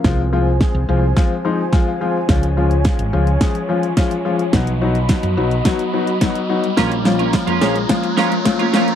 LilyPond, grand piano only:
<<
  \new Staff \with { instrumentName = "Grand piano" } { \time 4/4 \key bes \minor \tempo 4 = 107 r2 r8 c'''8 aes''16 f''8. | r1 | r1 | r1 | }
  \new Staff \with { instrumentName = "Grand piano" } { \time 4/4 \key bes \minor <f aes c' f'>16 r16 <f aes c' f'>16 r16 <f aes c' aes'>16 r16 <f aes c' f'>16 r16 <f aes c' f'>16 r16 <f aes c' ees'>16 r16 <f aes c' f'>16 r16 <f aes c' f'>16 r16 | <f aes des' f'>16 r16 <f aes des' f'>16 r16 <f aes des' f'>16 r16 <f aes des' f'>16 r16 <f aes des' aes'>16 r16 <f aes des' f'>16 r16 <f aes des' f'>16 r16 <f aes des' f'>16 r16 | <fis b dis' fis'>16 r16 <fis b dis' fis'>16 r16 <fis b dis' fis'>16 r16 <fis b dis' fis'>16 r16 <fis b dis' fis'>16 r16 <fis b dis' fis'>16 r16 <fis b dis' fis'>16 r16 <fis b dis' fis'>16 r16 | <f bes des' f'>16 r16 <f bes des' f'>16 r16 <f bes des' f'>16 r16 <f bes des' aes'>16 r16 <f bes des' f'>16 r16 <f bes des' f'>16 r16 <f bes des' f'>16 r16 <f bes des' f'>16 r16 | }
>>